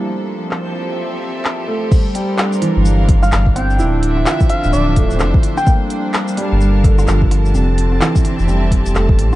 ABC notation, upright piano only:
X:1
M:4/4
L:1/16
Q:"Swing 16ths" 1/4=128
K:Gdor
V:1 name="Upright piano"
[G,A,B,]3 z8 z3 A,2- | A,2 G,4 E,8 C2 | E4 F6 A, C D4 | B,6 G,4 D, F,4- F, |
C,4 E,4 G,4 A,4 |]